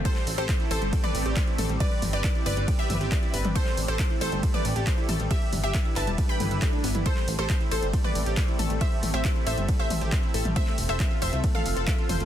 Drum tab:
RD |x---x---x---x---|x---x---x---x---|x---x---x---x---|x---x---x---x---|
HH |xxoxxxoxxxoxxxox|xxoxxxoxxxoxxxox|xxoxxxoxxxoxxxox|xxoxxxoxxxoxxxox|
CP |-x--x-------x---|----x-------x---|-x--x-------x---|----x-x-----x---|
T2 |---------o----o-|--o-------o----o|---------o----o-|--o-------o----o|
BD |o---o---o---o---|o---o---o---o---|o---o---o---o---|o---o---o---o---|

RD |x---x---x---x---|x---x---x---x---|x---x---x---x---|
HH |xxoxxxoxxxoxxxox|xxoxxxoxxxoxxxox|xxoxxxoxxxoxxxox|
CP |-x--x-------x---|----x-------x---|-x--x-------x---|
T2 |---------o----o-|--o-------o----o|---------o----o-|
BD |o---o---o---o---|o---o---o---o---|o---o---o---o---|